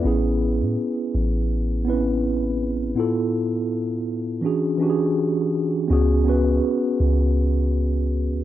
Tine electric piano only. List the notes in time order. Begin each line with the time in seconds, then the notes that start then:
Already playing: B4
0.02 B3 C#4 E4
0.07 G#4
1.85 B3 C4 E4
1.90 C#4 B4
2.95 A2 B3 E4 F4
3.00 A4
4.41 E3 C#4 D4 F#4
4.46 G#4
4.78 E3 C#4 D4 F#4
4.83 G4
4.90 G#4
5.88 B3 C#4 F#4
5.93 G#4
6.25 B3 C#4 F#4
6.29 B4